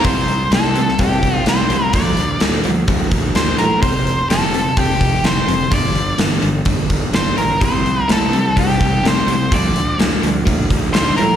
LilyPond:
<<
  \new Staff \with { instrumentName = "Lead electric guitar" } { \time 4/4 \key bes \lydian \tempo 4 = 127 c''4 a'4 g'4 c''4 | d''4 r2 c''8 bes'8 | c''4 a'4 g'4 c''4 | d''4 r2 c''8 bes'8 |
c''4 a'4 g'4 c''4 | d''4 r2 c''8 bes'8 | }
  \new Staff \with { instrumentName = "Overdriven electric guitar" } { \clef bass \time 4/4 \key bes \lydian <c g>4 <c a>8 <c g>8 <c g>4 <c a>8 <c g>8 | <bes, f>4 <bes, g>8 <bes, f>8 <bes, f>4 <bes, g>8 <bes, f>8 | <f, c>4 <f, d>8 <f, c>8 <f, c>4 <f, d>8 <f, c>8 | <g, d>4 <g, e>8 <g, d>8 <g, d>4 <g, e>8 <g, d>8 |
<c g>4 <c a>8 <c g>8 <c g>4 <c a>8 <c g>8 | <bes, f>4 <bes, g>8 <bes, f>8 <bes, f>4 <bes, g>8 <bes, f>8 | }
  \new Staff \with { instrumentName = "Overdriven electric guitar" } { \clef bass \time 4/4 \key bes \lydian <c g>4 <c a>8 <c g>8 <c g>4 <c a>8 <c g>8 | <bes, f>4 <bes, g>8 <bes, f>8 <bes, f>4 <bes, g>8 <bes, f>8 | <f, c>4 <f, d>8 <f, c>8 <f, c>4 <f, d>8 <f, c>8 | <g, d>4 <g, e>8 <g, d>8 <g, d>4 <g, e>8 <g, d>8 |
<c g>4 <c a>8 <c g>8 <c g>4 <c a>8 <c g>8 | <bes, f>4 <bes, g>8 <bes, f>8 <bes, f>4 <bes, g>8 <bes, f>8 | }
  \new Staff \with { instrumentName = "Fingered electric bass" } { \clef bass \time 4/4 \key bes \lydian c,4 c,4 c,8 c,8 c,8 c,8 | d,8 d,8 d,8 d,8 d,8 d,8 d,8 a,8 | f,,4 f,,4 f,,8 f,,8 f,,8 f,,8 | g,,8 g,,8 g,,8 g,,8 g,,8 g,,8 g,,8 bes,,8 |
c,4 c,4 c,8 c,8 c,8 c,8 | d,8 d,8 d,8 d,8 d,8 d,8 d,8 a,8 | }
  \new DrumStaff \with { instrumentName = "Drums" } \drummode { \time 4/4 <hho bd>8 hho8 <hho sn>8 hho16 sn16 <hho bd>8 <hho bd>8 <hho sn>8 hho8 | <hho bd>8 hho8 <hho sn>8 hho8 <hho bd>8 <hho bd>8 <hho sn>8 hho8 | <hho bd>8 hho8 <hho sn>8 hho8 <hho bd>8 <hho bd>8 <hho sn>8 hho8 | <hho bd>8 hho8 <hho sn>8 hho8 <hho bd>8 <hho bd>8 <hho sn>8 hho8 |
<hho bd>8 hho8 <hho sn>8 hho8 <hho bd>8 <hho bd>8 <hho sn>8 hho8 | <hho bd>8 hho8 <hho sn>8 hho8 <hho bd>8 <hho bd>8 <hho sn>8 hho8 | }
>>